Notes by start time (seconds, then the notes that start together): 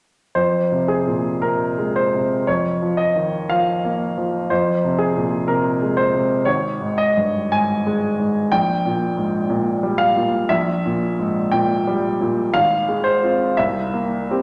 0.35 F2 C5
0.72 C3
0.88 G#4
1.07 A#2
1.42 C3 A#4
1.79 G#3
1.96 C5
2.14 C3
2.47 F2 C#5
2.82 F3
2.97 D#5
3.16 D#3
3.49 F3 F5
3.85 A#3
4.17 F3
4.50 F2 C5
4.85 C3
4.99 G#4
5.16 A#2
5.48 C3 A#4
5.82 G#3
5.97 C5
6.14 C3
6.45 G#1 C#5
6.81 G#2
6.98 D#5
7.17 G2
7.52 G#2 G#5
7.87 G#3
8.20 G#2
8.52 A#1 G5
8.85 A#2
9.17 G#2
9.49 A#2
9.83 G3
9.98 F5
10.16 A#2
10.49 A#1 E5
10.86 A#2
11.19 G#2
11.51 A#2 G5
11.87 G3
12.21 A#2
12.54 G#1 F5
12.89 G#3
13.04 C5
13.22 C4 F4
13.57 C2 E5
13.94 A#3
14.30 C4 G4